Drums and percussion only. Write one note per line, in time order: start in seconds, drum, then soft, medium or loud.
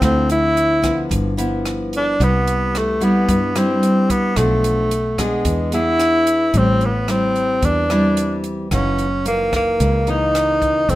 0.02 kick medium
0.02 cross-stick medium
0.02 closed hi-hat medium
0.30 closed hi-hat soft
0.57 closed hi-hat soft
0.84 kick medium
0.84 cross-stick medium
0.84 closed hi-hat soft
1.11 kick medium
1.11 closed hi-hat medium
1.38 closed hi-hat soft
1.65 cross-stick medium
1.65 closed hi-hat soft
1.93 closed hi-hat soft
2.20 kick medium
2.20 closed hi-hat soft
2.47 closed hi-hat soft
2.75 cross-stick medium
2.75 closed hi-hat soft
3.01 closed hi-hat soft
3.29 kick medium
3.29 closed hi-hat medium
3.56 cross-stick medium
3.56 closed hi-hat soft
3.83 closed hi-hat soft
4.10 kick medium
4.10 closed hi-hat soft
4.36 kick medium
4.36 cross-stick medium
4.36 closed hi-hat medium
4.64 closed hi-hat soft
4.91 closed hi-hat soft
5.18 kick medium
5.18 cross-stick medium
5.18 closed hi-hat soft
5.45 kick medium
5.45 closed hi-hat medium
5.72 closed hi-hat soft
6.00 cross-stick medium
6.00 closed hi-hat soft
6.27 closed hi-hat soft
6.54 kick soft
6.54 closed hi-hat soft
6.81 closed hi-hat soft
7.08 cross-stick medium
7.08 closed hi-hat soft
7.36 closed hi-hat soft
7.62 kick medium
7.62 closed hi-hat soft
7.90 cross-stick medium
7.90 closed hi-hat soft
8.17 closed hi-hat soft
8.44 closed hi-hat soft
8.71 kick medium
8.71 cross-stick medium
8.71 closed hi-hat soft
8.99 closed hi-hat soft
9.26 closed hi-hat soft
9.53 kick medium
9.53 cross-stick medium
9.53 closed hi-hat soft
9.80 kick medium
9.80 closed hi-hat soft
10.07 closed hi-hat soft
10.35 cross-stick medium
10.35 closed hi-hat soft
10.62 kick medium
10.62 closed hi-hat soft
10.89 kick medium
10.89 closed hi-hat soft